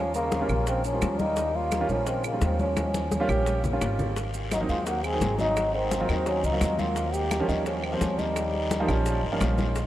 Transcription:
Already playing: D#2 F3 C#4
0.14 C#3 A#3, high bongo, high conga, maracas
0.32 high bongo, high conga, maracas
0.41 G3 A#3 C#4 F4
0.49 A#1 G3 A#3 C#4 F4, high bongo, high conga, claves, maracas
0.67 D#3 C4, high bongo, high conga, maracas
0.84 F3 C#4, high conga, maracas
0.93 G3 A#3 C#4 F4
1.02 D#2, high bongo, low bongo, high conga, claves, maracas
1.19 G3 D#4, high bongo, high conga, maracas
1.36 high bongo, high conga, maracas
1.55 A#3 F4, high conga
1.71 high bongo, high conga, claves, maracas
1.80 G3 A#3 C#4 F4
1.89 A#1 F3 G3 A#3 C#4 F4, high conga, maracas
2.06 D#3 C4, high bongo, high conga, maracas
2.24 C#3 A#3, high conga, claves, maracas
2.33 G3 A#3 C#4 F4
2.41 D#2 D#3 C4, high bongo, low bongo, high conga, maracas
2.59 F3 C#4, high conga, maracas
2.77 high bongo, high conga, claves, maracas
2.94 high bongo, high conga, maracas
3.11 high bongo, high conga, maracas
3.20 G3 A#3 C#4 F4
3.29 A#1 G3 A#3 C#4 G4, high bongo, high conga, claves, maracas
3.46 high bongo, maracas
3.64 low conga, maracas
3.73 G3 A#3 C#4 F4
3.81 G#1, high bongo, low bongo, claves, maracas
3.99 high bongo, low conga, maracas
4.16 high bongo, high conga, long guiro, maracas
4.34 high conga, maracas
4.51 F#3 D#4, high bongo, high conga, short guiro, claves, maracas
4.60 F#3 A#3 C4 D#4
4.69 D#2 F#3 G#3 A#3 C4 D#4 F4, high conga, short guiro, maracas
4.86 A#3 F#4, high bongo, high conga, long guiro, maracas
5.04 C4 G#4, high conga, claves, maracas
5.13 F#3 A#3 C4 D#4
5.21 G#1, high bongo, low bongo, high conga, short guiro, maracas
5.38 F#3 D#4, high conga, short guiro, maracas
5.56 high bongo, high conga, long guiro, claves, maracas
5.74 D#3 C4, high bongo, high conga
5.91 high bongo, high conga, short guiro, maracas
6.00 F#3 A#3 C4 F4
6.09 D#2 F#3 A#3 C4 D#4, high bongo, high conga, short guiro, claves, maracas
6.26 F#3 C#4, high bongo, high conga, long guiro, maracas
6.43 C#2 F#3 D#4, high conga, maracas
6.53 F#3 A#3 C4 F4
6.61 D#2, high bongo, low bongo, high conga, short guiro, claves, maracas
6.78 A#3 F4, high bongo, high conga, short guiro, maracas
6.96 high bongo, high conga, long guiro, maracas
7.14 A#3 G4, high conga, maracas
7.31 high bongo, high conga, short guiro, claves, maracas
7.40 F3 G3 A#3 C#4
7.48 D#2 F3 G3 A#3 C#4 D#4, high conga, short guiro, maracas
7.66 F3 C#4, high bongo, high conga, long guiro, maracas
7.84 D#3 C4, high conga, claves
7.92 F3 G3 A#3 C4
8.01 D#2 F3 C#4, high bongo, low bongo, high conga, short guiro, maracas
8.19 G3 D#4, high conga, short guiro, maracas
8.36 high bongo, high conga, long guiro, claves, maracas
8.53 high bongo, high conga
8.71 high bongo, high conga, short guiro, maracas
8.80 F3 G3 A#3 D#4
8.88 A#1 F3 G3 A#3 C#4, high bongo, high conga, short guiro, claves, maracas
9.06 high bongo, high conga, long guiro, maracas
9.23 G#1, high conga
9.32 F3 G3 A#3 C#4
9.41 A#1, high bongo, low bongo, high conga, short guiro, claves, maracas
9.58 high bongo, high conga, short guiro, maracas
9.75 high bongo, high conga, long guiro, maracas

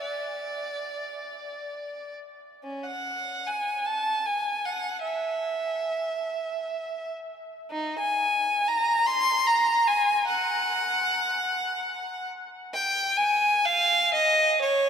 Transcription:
0.01 D5
2.64 C#4
2.86 F#5
3.47 G#5
3.86 A5
4.26 G#5
4.65 F#5
5.04 E5
7.71 D#4
7.99 G#5
8.68 A#5
9.06 C6
9.47 A#5
9.88 G#5
10.27 F#5
12.74 G5
13.17 G#5
13.65 F5
14.14 D#5
14.62 C#5

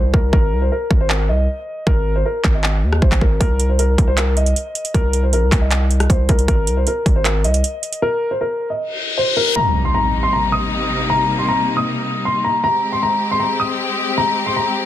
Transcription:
Already playing: C2 C5
0.14 C2 A#4, kick
0.33 G#1 A#4, kick
0.52 C2
0.62 C5
0.72 A#4
0.91 G#1, kick
1.01 C5
1.09 A#4, clap
1.29 C2 D#5
1.87 G#1 A#4, kick
2.16 C5
2.26 A#4
2.44 G#1, kick, clap
2.55 D#5
2.64 clap
2.83 D#2
2.93 cross-stick
3.02 G#1 C5, kick
3.12 G#1, kick, clap
3.21 G#1 A#4, kick
3.40 C2 A#4, kick, closed hi-hat
3.60 closed hi-hat
3.69 C5
3.79 A#4, closed hi-hat
3.98 C2, kick, closed hi-hat
4.08 C5
4.17 A#4, clap, closed hi-hat
4.37 D#5, closed hi-hat
4.46 closed hi-hat
4.56 closed hi-hat
4.75 closed hi-hat
4.85 closed hi-hat
4.94 C2 A#4, kick, closed hi-hat
5.13 closed hi-hat
5.23 C5
5.33 A#1 A#4, closed hi-hat
5.42 C2
5.52 C2, kick, clap, closed hi-hat
5.61 D#5
5.71 clap, closed hi-hat
5.91 closed hi-hat
6.00 cross-stick, closed hi-hat
6.10 C2 C5, kick, closed hi-hat
6.29 C2 A#4, kick, closed hi-hat, open hi-hat
6.39 closed hi-hat
6.48 G#1 A#4, kick, closed hi-hat
6.67 C2, closed hi-hat
6.77 C5
6.87 A#4, closed hi-hat
7.06 G#1, kick, closed hi-hat
7.16 C5
7.24 A#4, clap, closed hi-hat
7.44 C2 D#5, closed hi-hat
7.54 closed hi-hat
7.64 closed hi-hat
7.83 closed hi-hat
7.93 closed hi-hat
8.02 A#4
8.31 C5
8.41 A#4
8.70 D#5
8.79 reverse cymbal
9.17 C5
9.37 A#4
9.56 C3 G3 A#3 D#4 A#5, impact
9.85 C6
9.94 A#5
10.23 C6
10.33 A#5
10.52 D#6
11.10 A#5
11.39 C6
11.48 A#5
11.77 D#6
12.25 C6
12.44 A#5
12.64 G#3 C4 G4 A#5
12.92 C6
13.03 A#5
13.31 C6
13.40 A#5
13.60 D#6
14.18 A#5
14.46 C6
14.56 A#5

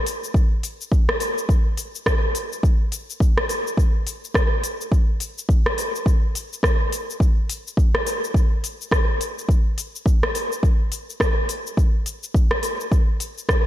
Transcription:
0.06 open hi-hat, shaker
0.24 shaker
0.34 kick, shaker
0.63 open hi-hat, shaker
0.81 shaker
0.92 kick, shaker
1.09 cross-stick
1.20 open hi-hat, shaker
1.38 shaker
1.49 kick, shaker
1.77 open hi-hat, shaker
1.95 shaker
2.06 kick, cross-stick, shaker
2.35 open hi-hat, shaker
2.53 shaker
2.63 kick, shaker
2.92 open hi-hat, shaker
3.10 shaker
3.20 kick, shaker
3.38 cross-stick
3.49 open hi-hat, shaker
3.67 shaker
3.77 kick, shaker
4.07 open hi-hat, shaker
4.24 shaker
4.34 kick, cross-stick, shaker
4.64 open hi-hat, shaker
4.81 shaker
4.92 kick, shaker
5.20 open hi-hat, shaker
5.38 shaker
5.49 kick, shaker
5.66 cross-stick
5.78 open hi-hat, shaker
5.96 shaker
6.06 kick, shaker
6.35 open hi-hat, shaker
6.53 shaker
6.63 kick, cross-stick, shaker
6.92 open hi-hat, shaker
7.10 shaker
7.20 kick, shaker
7.50 open hi-hat, shaker
7.68 shaker
7.77 kick, shaker
7.95 cross-stick
8.07 open hi-hat, shaker
8.24 shaker
8.34 kick, shaker
8.64 open hi-hat, shaker
8.81 shaker
8.91 kick, cross-stick, shaker
9.21 open hi-hat, shaker
9.39 shaker
9.49 kick, shaker
9.78 open hi-hat, shaker
9.96 shaker
10.06 kick, shaker
10.23 cross-stick
10.35 open hi-hat, shaker
10.52 shaker
10.63 kick, shaker
10.92 open hi-hat, shaker
11.10 shaker
11.20 kick, cross-stick, shaker
11.49 open hi-hat, shaker
11.67 shaker
11.77 kick, shaker
12.06 open hi-hat, shaker
12.23 shaker
12.34 kick, shaker
12.51 cross-stick
12.63 open hi-hat, shaker
12.80 shaker
12.92 kick, shaker
13.20 open hi-hat, shaker
13.38 shaker
13.49 kick, cross-stick, shaker

